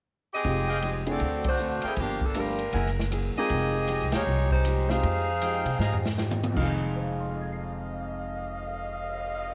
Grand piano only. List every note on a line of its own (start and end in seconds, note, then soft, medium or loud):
0.44 0.66 G#3 soft
0.44 0.66 C4 soft
0.44 0.66 D#4 soft
0.44 0.67 F4 soft
0.44 0.67 G4 medium
1.06 1.19 A3 medium
1.06 1.19 C4 medium
1.06 1.19 D4 medium
1.06 1.19 E4 medium
1.06 1.20 G#4 medium
2.35 2.57 A3 medium
2.35 2.57 A#3 soft
2.35 2.57 D4 soft
2.35 2.57 F4 soft
2.35 2.57 G4 medium
3.38 3.87 G#3 medium
3.38 3.87 C4 medium
3.38 3.87 D#4 medium
3.38 3.87 F4 medium
3.38 3.87 A#4 medium
4.90 5.02 G#3 medium
4.90 5.03 C4 medium
4.90 5.03 D#4 medium
4.90 5.03 F4 medium
4.90 5.03 G4 medium
6.50 9.54 F2 medium
6.50 9.54 F3 medium
6.57 9.54 D#4 medium
6.57 9.54 F4 medium
6.63 9.54 G#4 medium
6.96 9.54 C5 soft
7.03 9.54 F5 soft
7.11 9.54 G#5 soft
7.20 9.54 C6 soft
7.30 9.54 F6 soft
7.41 9.54 G#6 soft
7.52 9.54 C7 soft